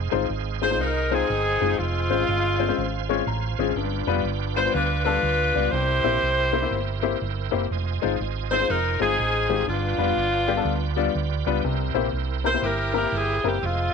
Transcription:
Already playing: tonewheel organ D#4 G#4 C5 F5
0.11 fingered electric bass G1, grand piano G#3 C4 D#4 F4 C5
0.29 fingered electric bass G#1
0.62 grand piano G#3 C4 D#4 F4 G#4, saxophone section C5
0.71 grand piano G#3 C4 D#4 F4 C5
0.79 fingered electric bass C2, saxophone section D#4 A#4
1.11 grand piano G#3 C4 D#4 F4 C5, saxophone section C4 D#4 G#4
1.30 fingered electric bass G1
1.61 fingered electric bass F#1, grand piano G#3 C4 D#4 F4 G#4
1.78 fingered electric bass F1, saxophone section G#3 C4 F4, tonewheel organ F4 F5 G#5
2.10 fingered electric bass G#1, grand piano G#3 C4 C#4 F4 C5
2.28 fingered electric bass G1
2.59 grand piano G#3 C4 C#4 F4 C5
2.68 grand piano G#3 C4 C#4 F4 C5
2.78 fingered electric bass G#1
3.09 grand piano G#3 C4 C#4 F4 C#5
3.27 fingered electric bass A1, grand piano A#5
3.59 fingered electric bass G#1, grand piano G#3 C4 C#4 F4 G#4
3.75 fingered electric bass G1, grand piano G2, tonewheel organ B4 D5 G5
4.07 fingered electric bass F1, grand piano G3 B3 D4 F4 B4
4.24 fingered electric bass G1
4.55 grand piano G3 B3 D4 F4 B4, saxophone section C5
4.65 grand piano G3 B3 D4 F4 B4
4.72 fingered electric bass D2, saxophone section D4 F4 B4
5.03 grand piano G3 B3 D4 F4 A4, saxophone section D4 F4 B4
5.23 fingered electric bass D2
5.55 fingered electric bass C#2, grand piano G3 B3 D4 F4 D5
5.69 fingered electric bass C2, saxophone section E4 G4 C5
5.73 grand piano C3, tonewheel organ E4 A#4 C5
6.04 fingered electric bass A#1, grand piano A#3 C4 E4 G4 C5
6.22 fingered electric bass C2
6.53 grand piano A#3 C4 E4 G4 C5
6.62 grand piano A#3 C4 E4 G4 C5
6.71 fingered electric bass G1
7.02 grand piano A#3 C4 E4 G4 C5
7.22 fingered electric bass G1
7.51 fingered electric bass F#1, grand piano A#3 C4 E4 G4 C5
7.71 fingered electric bass F1, tonewheel organ F4 C5 D#5 G#5
8.02 fingered electric bass G1, grand piano G#3 C4 D#4 F4 C5
8.20 fingered electric bass G#1
8.51 grand piano G#3 C4 D#4 F4 C5, saxophone section C5
8.60 grand piano G#3 C4 D#4 F4 C5
8.69 fingered electric bass F1, saxophone section D#4 A#4
9.00 fingered electric bass G1, grand piano G#3 C4 D#4 F4 C5, saxophone section C4 D#4 G#4
9.19 fingered electric bass A1
9.49 fingered electric bass G#1, grand piano G#3 C4 D#4 F4 G4
9.67 fingered electric bass G1, grand piano G2, saxophone section B3 D4 F4, tonewheel organ B4 D5 G5
9.98 fingered electric bass F1, grand piano G3 B3 D4 F4 B4
10.17 fingered electric bass G1
10.48 grand piano G3 B3 D4 F4 G4
10.56 grand piano G3 B3 D4 F4 A4
10.65 fingered electric bass D2
10.96 grand piano G3 B3 D4 F4 D5
11.15 fingered electric bass D2
11.46 fingered electric bass C#2, grand piano G3 B3 D4 F4 B4
11.64 fingered electric bass C2, grand piano C3, tonewheel organ E4 A#4 C5
11.94 fingered electric bass A#1, grand piano A#3 C4 E4 G4 C5
12.13 fingered electric bass C2
12.44 grand piano A#3 C4 E4 G4 A#4, saxophone section C5
12.54 grand piano A#3 C4 E4 G4 A#4
12.62 fingered electric bass G1, saxophone section E4 G4 A#4
12.93 grand piano A#3 C4 E4 G4 A#4, saxophone section A#4
13.12 fingered electric bass G1, saxophone section G#4
13.44 fingered electric bass F#1, grand piano A#3 C4 E4 G4 A#4, saxophone section G4
13.62 fingered electric bass F1, saxophone section G#3 C4 F4, tonewheel organ F4 C5 D#5 G#5

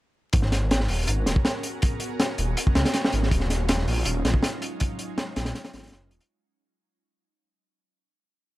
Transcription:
0.33 detuned saw bass G#1, kick, closed hi-hat
0.42 snare
0.52 snare, closed hi-hat
0.71 snare, closed hi-hat
0.80 snare
0.88 detuned saw bass D#1, ambient pad B3 C#4 F#4 G#4 A#4, open hi-hat
1.07 detuned saw bass G#1, closed hi-hat
1.26 detuned saw bass D#1, snare, closed hi-hat
1.36 kick
1.45 snare, closed hi-hat
1.63 closed hi-hat
1.82 kick, closed hi-hat
2.00 closed hi-hat
2.20 snare, closed hi-hat
2.38 detuned saw bass D#1, ambient pad B3 C#4 F#4 G#4 A#4, closed hi-hat
2.57 closed hi-hat
2.67 kick
2.75 detuned saw bass C#2, snare, closed hi-hat
2.85 snare, closed hi-hat
2.94 snare, closed hi-hat
3.04 snare
3.13 detuned saw bass G#1, closed hi-hat
3.23 snare
3.31 detuned saw bass D#1, kick, closed hi-hat
3.40 snare
3.50 snare, closed hi-hat
3.69 snare, closed hi-hat
3.78 snare
3.87 detuned saw bass A#1, ambient pad F#3 G#3 C#4 D#4 F4, open hi-hat
4.05 detuned saw bass D#1, closed hi-hat
4.25 detuned saw bass A#1, snare, closed hi-hat
4.34 kick
4.43 snare, closed hi-hat
4.62 closed hi-hat
4.80 kick, closed hi-hat
4.99 closed hi-hat
5.18 snare, closed hi-hat
5.36 detuned saw bass A#1, ambient pad F#3 G#3 C#4 D#4 F4, snare, closed hi-hat
5.45 snare, closed hi-hat
5.55 snare, closed hi-hat
5.65 snare, closed hi-hat
5.73 detuned saw bass G#1, snare, closed hi-hat
5.78 snare, closed hi-hat
5.83 snare, closed hi-hat
5.87 snare, closed hi-hat
5.92 detuned saw bass F#1, snare, closed hi-hat
6.11 detuned saw bass D#1, closed hi-hat
6.21 closed hi-hat

